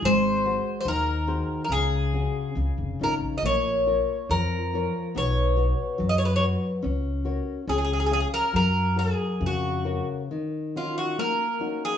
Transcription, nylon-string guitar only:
\new Staff \with { instrumentName = "Nylon-string guitar" } { \time 2/4 \key fis \major \tempo 4 = 70 gis8 <fis' gis' bis'>8 dis8 <fis' gis' bis'>8 | cis8 <cis' fis' gis'>8 cis8 <cis' dis' eis'>8 | ais8 <eis' ais' cis''>8 eis8 <eis' ais' cis''>8 | b8 <fis' b' cis''>8 fis8 <fis' b' cis''>8 |
cis'8 <fis' ais' cis''>8 cis'8 <gis' cis'' eis''>8 | fis8 <fis' ais' cis''>8 cis8 <fis' ais' cis''>8 | \key ees \minor ees8 <des' ees' ges'>8 bes8 <des' ees' ges'>8 | }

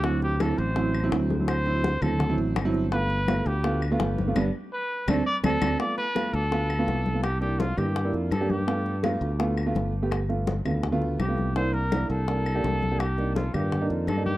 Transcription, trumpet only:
\new Staff \with { instrumentName = "Trumpet" } { \time 4/4 \key g \mixolydian \tempo 4 = 167 fis'8 g'8 a'8 c''4. r4 | c''4. a'4 r4. | b'4. g'4 r4. | r4 b'4 a'8 d''8 a'4 |
d''8 b'4 a'2~ a'8 | g'8 g'8 f'8 g'4 r8 a'8 g'8~ | g'4 r2. | r2. g'4 |
c''8 bes'4 a'2~ a'8 | g'4 f'8 g'4 r8 a'8 g'8 | }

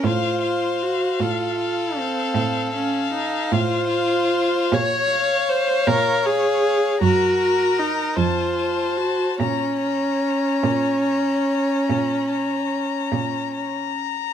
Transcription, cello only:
\new Staff \with { instrumentName = "Cello" } { \clef bass \time 12/8 \key bes \minor \tempo 4. = 51 a,4. a,4. a,4. a,4. | bes,4. bes,4. ges,4. f,4. | bes,4. bes,4. bes,4. bes,4. | }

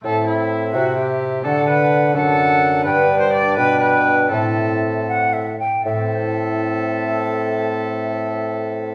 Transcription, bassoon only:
\new Staff \with { instrumentName = "Bassoon" } { \clef bass \time 6/8 \key a \dorian \tempo 4. = 80 a,4. c4. | d4. fis,4. | g,4. b,4. | a,2~ a,8 r8 |
a,2.~ | a,2. | }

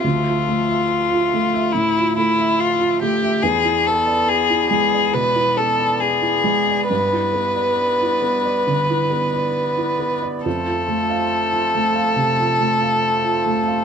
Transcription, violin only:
\new Staff \with { instrumentName = "Violin" } { \time 4/4 \key g \mixolydian \tempo 4 = 70 f'2 e'8 e'8 f'8 g'8 | gis'8 a'8 gis'8 gis'8 b'8 a'8 gis'4 | b'2.~ b'8. r16 | a'1 | }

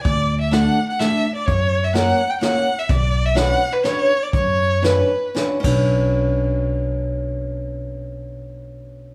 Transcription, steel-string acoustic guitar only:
\new Staff \with { instrumentName = "Steel-string acoustic guitar" } { \time 3/4 \key b \minor \tempo 4 = 122 r4 <a d' fis' a'>8 r8 <a d' fis' a'>8 r8 | r4 <ais cis' fis' ais'>8 r8 <ais cis' fis' ais'>8 r8 | r4 <cis' d' fis' b'>8 r8 <cis' d' fis' b'>8 r8 | r4 <cis' d' fis' b'>8 r8 <cis' d' fis' b'>8 <cis' d' fis' b'>8~ |
<cis' d' fis' b'>2.~ | <cis' d' fis' b'>2. | }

